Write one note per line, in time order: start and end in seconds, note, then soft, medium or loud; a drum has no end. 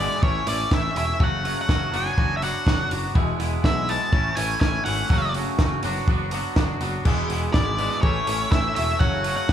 0.00 0.21 E2 loud
0.00 0.21 B2 loud
0.00 0.21 E3 loud
0.00 0.22 G#3 loud
0.00 0.22 B3 loud
0.00 0.22 E4 loud
0.00 0.23 D5 medium
0.11 snare soft
0.21 0.39 A1 loud
0.21 0.45 A2 medium
0.21 0.46 E3 medium
0.21 0.46 A3 loud
0.21 0.47 C#4 medium
0.21 0.47 E4 loud
0.21 0.48 C#5 medium
0.21 kick loud
0.46 0.64 A1 medium
0.46 0.70 A2 medium
0.46 0.71 E3 medium
0.46 0.71 A3 medium
0.46 0.72 C#4 loud
0.46 0.72 E4 loud
0.46 0.73 D5 medium
0.46 open hi-hat loud
0.71 0.88 A1 medium
0.71 0.93 A2 loud
0.71 0.94 E3 medium
0.71 0.94 A3 medium
0.71 0.95 C#4 medium
0.71 0.95 E4 loud
0.71 0.97 E5 medium
0.71 kick loud
0.71 snare loud
0.94 1.12 E1 medium
0.94 1.18 A2 medium
0.94 1.19 E3 medium
0.94 1.19 A3 medium
0.94 1.19 C#4 medium
0.94 1.19 E4 medium
0.94 1.22 E5 medium
0.94 open hi-hat loud
1.19 1.53 F#1 loud
1.19 1.42 F#2 loud
1.19 1.43 C#3 loud
1.19 1.43 F#3 loud
1.19 1.44 A3 loud
1.19 1.45 C#4 loud
1.19 1.45 F#4 loud
1.19 kick loud
1.24 1.56 F#5 loud
1.44 1.66 F#2 medium
1.44 1.67 C#3 loud
1.44 1.68 F#3 medium
1.44 1.68 A3 medium
1.44 1.68 C#4 medium
1.44 1.69 F#4 medium
1.44 open hi-hat medium
1.61 1.96 F#5 loud
1.68 1.86 F#1 loud
1.68 1.91 F#2 medium
1.68 1.92 C#3 medium
1.68 1.91 F#3 medium
1.68 1.92 A3 medium
1.68 1.92 C#4 loud
1.68 1.93 F#4 medium
1.68 kick loud
1.68 snare loud
1.92 2.10 F#1 medium
1.92 2.16 F#3 loud
1.92 2.16 B3 loud
1.92 2.18 D4 loud
1.92 2.18 F#4 loud
1.92 open hi-hat medium
1.96 2.34 G#5 loud
2.06 snare soft
2.17 2.51 F#1 medium
2.17 2.41 F#3 medium
2.17 2.41 B3 medium
2.17 2.42 D4 medium
2.17 2.42 F#4 loud
2.17 kick loud
2.37 2.43 E5 medium
2.42 2.65 F#3 loud
2.42 2.65 B3 loud
2.42 2.66 D4 medium
2.42 2.66 F#4 loud
2.42 2.89 F#5 medium
2.42 open hi-hat medium
2.66 2.83 F#1 medium
2.66 2.89 F#3 medium
2.66 2.90 B3 medium
2.66 2.90 D4 medium
2.66 2.91 F#4 medium
2.66 kick loud
2.66 snare loud
2.90 3.08 F#1 medium
2.90 3.14 F#3 medium
2.90 3.14 B3 medium
2.90 3.14 D4 medium
2.90 3.14 F#4 medium
2.90 open hi-hat medium
3.14 3.32 E1 loud
3.14 3.38 E2 loud
3.14 3.39 B2 loud
3.14 3.39 E3 loud
3.14 3.40 G#3 loud
3.14 3.40 B3 loud
3.14 3.40 E4 loud
3.14 kick loud
3.39 3.56 E1 medium
3.39 3.63 E2 loud
3.39 3.63 B2 medium
3.39 3.64 E3 loud
3.39 3.64 G#3 loud
3.39 3.64 B3 loud
3.39 3.65 E4 loud
3.39 open hi-hat medium
3.64 3.97 B1 loud
3.64 3.87 E2 loud
3.64 3.88 B2 medium
3.64 3.88 E3 medium
3.64 3.89 G#3 medium
3.64 3.89 B3 medium
3.64 3.90 E4 medium
3.64 3.90 E5 loud
3.64 kick loud
3.64 snare loud
3.88 4.11 E2 loud
3.88 4.12 B2 loud
3.88 4.12 E3 loud
3.88 4.12 G#3 loud
3.88 4.12 B3 loud
3.88 4.13 E4 loud
3.88 4.39 A5 loud
3.88 open hi-hat medium
4.13 4.29 A1 loud
4.13 4.36 A2 medium
4.13 4.36 E3 loud
4.13 4.37 A3 loud
4.13 4.37 C#4 loud
4.13 4.38 E4 medium
4.13 kick loud
4.35 4.54 A1 medium
4.35 4.60 A2 medium
4.35 4.61 E3 loud
4.35 4.61 A3 loud
4.35 4.62 C#4 loud
4.35 4.62 E4 loud
4.35 4.59 G#5 medium
4.35 open hi-hat loud
4.61 4.78 A1 medium
4.61 4.85 A2 medium
4.61 4.86 E3 medium
4.61 4.86 A3 medium
4.61 4.87 C#4 loud
4.61 4.87 E4 medium
4.61 4.85 G#5 loud
4.61 kick loud
4.61 snare loud
4.85 5.02 G#1 medium
4.85 5.09 A2 medium
4.85 5.10 E3 medium
4.85 5.10 A3 medium
4.85 5.10 C#4 medium
4.85 5.10 E4 medium
4.85 5.31 F#5 medium
4.85 open hi-hat loud
5.10 5.43 F#1 loud
5.10 5.33 F#2 loud
5.10 5.34 C#3 loud
5.10 5.35 F#3 loud
5.10 5.35 A3 loud
5.10 5.35 C#4 loud
5.10 5.36 F#4 loud
5.10 kick loud
5.34 5.58 F#2 loud
5.34 5.59 C#3 loud
5.34 5.59 F#3 loud
5.34 5.60 A3 loud
5.34 5.60 C#4 loud
5.34 5.61 F#4 loud
5.34 open hi-hat medium
5.59 5.75 F#1 loud
5.59 5.82 F#2 medium
5.59 5.83 C#3 medium
5.59 5.83 F#3 medium
5.59 5.83 A3 medium
5.59 5.83 C#4 loud
5.59 5.84 F#4 medium
5.59 kick loud
5.59 snare loud
5.83 6.00 F#1 loud
5.83 6.08 F#3 loud
5.83 6.08 B3 loud
5.83 6.09 D4 loud
5.83 6.09 F#4 loud
5.83 open hi-hat medium
5.96 snare soft
6.07 6.41 F#1 loud
6.07 6.31 F#3 medium
6.07 6.32 B3 medium
6.07 6.33 D4 medium
6.07 6.33 F#4 medium
6.07 kick loud
6.31 6.55 F#3 medium
6.31 6.55 B3 medium
6.31 6.56 D4 medium
6.31 6.56 F#4 loud
6.31 open hi-hat medium
6.56 6.73 F#1 medium
6.56 6.79 F#3 medium
6.56 6.80 B3 medium
6.56 6.80 D4 loud
6.56 6.80 F#4 medium
6.56 kick loud
6.56 snare loud
6.80 6.98 F#1 medium
6.80 7.04 F#3 medium
6.80 7.04 B3 medium
6.80 7.04 D4 medium
6.80 7.04 F#4 medium
6.80 open hi-hat medium
7.04 7.22 E1 loud
7.04 7.27 E2 loud
7.04 7.28 B2 loud
7.04 7.28 E3 loud
7.04 7.29 G#3 loud
7.04 7.29 B3 loud
7.04 7.30 E4 loud
7.04 8.06 G#4 loud
7.04 kick loud
7.04 crash loud
7.28 7.47 E1 medium
7.28 7.52 E2 medium
7.28 7.52 B2 medium
7.28 7.52 E3 medium
7.28 7.53 G#3 medium
7.28 7.54 B3 loud
7.28 7.54 E4 loud
7.28 open hi-hat medium
7.53 7.87 G#1 medium
7.53 7.76 E2 medium
7.53 7.77 B2 medium
7.53 7.77 E3 medium
7.53 7.78 G#3 medium
7.53 7.78 B3 medium
7.53 7.78 E4 medium
7.53 7.99 D5 medium
7.53 kick loud
7.53 snare loud
7.77 8.01 E2 loud
7.77 8.01 B2 loud
7.77 8.01 E3 loud
7.77 8.02 G#3 loud
7.77 8.02 B3 loud
7.77 8.02 E4 loud
7.77 open hi-hat medium
7.91 snare soft
8.02 8.20 A1 loud
8.02 8.25 A2 medium
8.02 8.26 E3 loud
8.02 8.26 A3 medium
8.02 8.27 C#4 medium
8.02 8.28 E4 medium
8.02 8.97 A4 medium
8.02 8.52 C#5 medium
8.02 kick loud
8.27 8.44 A1 medium
8.27 8.50 A2 loud
8.27 8.50 E3 loud
8.27 8.51 A3 loud
8.27 8.51 C#4 loud
8.27 8.52 E4 loud
8.27 open hi-hat loud
8.51 8.68 A1 medium
8.51 8.74 A2 medium
8.51 8.74 E3 loud
8.51 8.74 A3 medium
8.51 8.75 C#4 medium
8.51 8.76 E4 medium
8.51 8.74 E5 medium
8.51 kick loud
8.51 snare loud
8.75 8.93 E1 medium
8.75 8.99 A2 medium
8.75 8.99 E3 medium
8.75 8.99 A3 loud
8.75 8.99 C#4 medium
8.75 9.00 E4 loud
8.75 8.99 E5 medium
8.75 open hi-hat loud
8.99 9.34 F#1 loud
8.99 9.23 F#2 loud
8.99 9.24 C#3 loud
8.99 9.25 F#3 loud
8.99 9.25 A3 loud
8.99 9.26 C#4 loud
8.99 9.26 F#4 loud
8.99 9.53 C#5 loud
8.99 9.36 F#5 loud
8.99 kick loud
9.24 9.48 F#2 medium
9.24 9.49 C#3 medium
9.24 9.49 F#3 medium
9.24 9.49 A3 medium
9.24 9.50 C#4 loud
9.24 9.50 F#4 medium
9.24 open hi-hat loud
9.37 9.53 F#5 loud
9.48 9.53 F#1 loud
9.48 9.53 F#2 medium
9.48 9.53 F#3 medium
9.48 9.53 A3 loud
9.48 9.53 C#4 loud
9.48 kick loud
9.48 snare loud